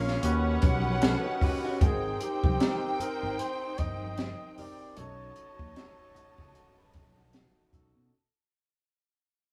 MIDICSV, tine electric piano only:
0, 0, Header, 1, 2, 480
1, 0, Start_track
1, 0, Tempo, 789889
1, 1100, Time_signature, 4, 2, 24, 8
1, 5791, End_track
2, 0, Start_track
2, 0, Title_t, "Tine electric piano"
2, 0, Program_c, 0, 4
2, 0, Control_c, 0, 64, 127
2, 0, Note_on_c, 0, 61, 73
2, 0, Note_on_c, 0, 65, 69
2, 0, Note_on_c, 0, 68, 68
2, 0, Note_on_c, 0, 73, 81
2, 126, Note_off_c, 0, 61, 0
2, 133, Note_on_c, 0, 61, 96
2, 139, Note_on_c, 0, 66, 82
2, 140, Note_off_c, 0, 65, 0
2, 143, Note_off_c, 0, 68, 0
2, 144, Note_on_c, 0, 67, 84
2, 145, Note_off_c, 0, 73, 0
2, 149, Control_c, 0, 64, 0
2, 150, Note_on_c, 0, 71, 102
2, 268, Control_c, 0, 64, 127
2, 776, Note_off_c, 0, 61, 0
2, 779, Note_off_c, 0, 66, 0
2, 782, Note_off_c, 0, 67, 0
2, 784, Note_off_c, 0, 71, 0
2, 855, Note_on_c, 0, 61, 78
2, 862, Note_on_c, 0, 66, 70
2, 867, Note_on_c, 0, 67, 71
2, 874, Note_on_c, 0, 71, 94
2, 1071, Note_off_c, 0, 61, 0
2, 1074, Note_off_c, 0, 66, 0
2, 1077, Note_off_c, 0, 67, 0
2, 1080, Note_off_c, 0, 71, 0
2, 1095, Note_on_c, 0, 60, 74
2, 1101, Note_on_c, 0, 63, 64
2, 1105, Note_on_c, 0, 79, 69
2, 1107, Control_c, 0, 64, 0
2, 1113, Note_on_c, 0, 70, 81
2, 1220, Control_c, 0, 64, 127
2, 1524, Note_off_c, 0, 60, 0
2, 1527, Note_off_c, 0, 63, 0
2, 1529, Note_off_c, 0, 79, 0
2, 1533, Note_off_c, 0, 70, 0
2, 1572, Note_on_c, 0, 60, 74
2, 1578, Note_on_c, 0, 63, 67
2, 1585, Note_on_c, 0, 67, 64
2, 1590, Note_on_c, 0, 70, 81
2, 2426, Note_off_c, 0, 60, 0
2, 2429, Note_off_c, 0, 63, 0
2, 2432, Note_off_c, 0, 67, 0
2, 2435, Note_off_c, 0, 70, 0
2, 2771, Note_on_c, 0, 60, 64
2, 2777, Note_on_c, 0, 63, 60
2, 2783, Note_on_c, 0, 67, 58
2, 2789, Note_on_c, 0, 70, 72
2, 2989, Note_off_c, 0, 60, 0
2, 2992, Note_off_c, 0, 63, 0
2, 2995, Note_off_c, 0, 67, 0
2, 2997, Note_off_c, 0, 70, 0
2, 3010, Note_on_c, 0, 61, 66
2, 3014, Note_on_c, 0, 63, 67
2, 3020, Note_on_c, 0, 66, 64
2, 3027, Control_c, 0, 64, 0
2, 3027, Note_on_c, 0, 69, 78
2, 3153, Control_c, 0, 64, 127
2, 3441, Note_off_c, 0, 61, 0
2, 3443, Note_off_c, 0, 63, 0
2, 3446, Note_off_c, 0, 66, 0
2, 3450, Note_off_c, 0, 69, 0
2, 3490, Note_on_c, 0, 61, 71
2, 3494, Note_on_c, 0, 63, 66
2, 3502, Note_on_c, 0, 66, 64
2, 3509, Note_on_c, 0, 69, 79
2, 4344, Note_off_c, 0, 61, 0
2, 4347, Note_off_c, 0, 63, 0
2, 4350, Note_off_c, 0, 66, 0
2, 4354, Note_off_c, 0, 69, 0
2, 4688, Note_on_c, 0, 61, 69
2, 4692, Note_on_c, 0, 63, 70
2, 4698, Note_on_c, 0, 66, 66
2, 4705, Note_on_c, 0, 69, 85
2, 4907, Note_off_c, 0, 61, 0
2, 4909, Note_off_c, 0, 63, 0
2, 4912, Note_off_c, 0, 66, 0
2, 4915, Note_off_c, 0, 69, 0
2, 4947, Control_c, 0, 64, 0
2, 5791, End_track
0, 0, End_of_file